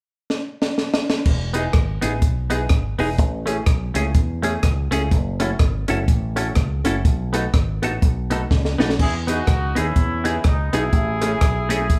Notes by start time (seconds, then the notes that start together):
0.30 snare
0.62 snare
0.78 snare
0.94 snare
1.10 snare
1.25 E1, kick, crash
1.53 B3 D#4 E4 G#4, closed hi-hat
1.73 G#1 E4 G#4, kick, cross-stick, closed hi-hat
2.01 A1 B3 D#4 E4 G#4, closed hi-hat
2.22 B1, kick, closed hi-hat
2.50 B3 D#4 E4 G#4, closed hi-hat
2.69 G#1, kick, cross-stick, closed hi-hat
2.99 E1 B3 D#4 E4 G#4, open hi-hat
3.18 A1, kick, closed hi-hat
3.46 A3 C#4 E4 G#4, closed hi-hat
3.66 B1 E4 G#4, kick, cross-stick, closed hi-hat
3.94 C#2 A3 C#4 E4 G#4, closed hi-hat
4.15 E2, kick, closed hi-hat
4.42 A3 C#4 E4 G#4, closed hi-hat
4.62 C#2, muted clean electric guitar stroke, kick, cross-stick, closed hi-hat
4.91 C#2 A3 C#4 E4 G#4, closed hi-hat
5.11 F#1, kick, closed hi-hat
5.40 A3 C#4 E4 F#4 A4, closed hi-hat
5.59 G#1, kick, cross-stick, closed hi-hat
5.88 F#1 A3 C#4 E4 F#4 A4, closed hi-hat
6.08 A1, kick, closed hi-hat
6.36 A3 C#4 E4 F#4 A4, closed hi-hat
6.55 C#2, kick, cross-stick, closed hi-hat
6.84 F#1 A3 C#4 E4 F#4 A4, closed hi-hat
7.05 B1, kick, closed hi-hat
7.33 A3 B3 D#4 F#4 A4, closed hi-hat
7.54 G#1 D#4 F#4, kick, cross-stick, closed hi-hat
7.82 A1 A3 B3 D#4 F#4 A4, closed hi-hat
8.02 B1, kick, closed hi-hat
8.30 A3 B3 D#4 F#4 A4, closed hi-hat
8.50 C#2, muted clean electric guitar stroke, kick, snare
8.65 snare
8.78 B1 A3 B3 D#4 F#4 A4, snare
8.90 snare
8.99 E2 E4 G#4, kick, crash
9.27 B3 D#4 E4 F#4 G#4, closed hi-hat
9.47 C#2, muted clean electric guitar stroke, kick, cross-stick, closed hi-hat
9.75 D#2 B3 C#4 D#4 E4 G#4, closed hi-hat
9.96 E2, kick, closed hi-hat
10.24 B3 D#4 E4 G#4, closed hi-hat
10.44 C#2 B3 D#4, kick, cross-stick, closed hi-hat
10.73 B1 B3 D#4 E4 G#4, closed hi-hat
10.93 A1, kick, closed hi-hat
11.21 A3 C#4 E4 G#4, closed hi-hat
11.40 B1, muted clean electric guitar stroke, kick, cross-stick, closed hi-hat
11.69 A3 C#4 E4 G#4, closed hi-hat
11.90 A1, kick, closed hi-hat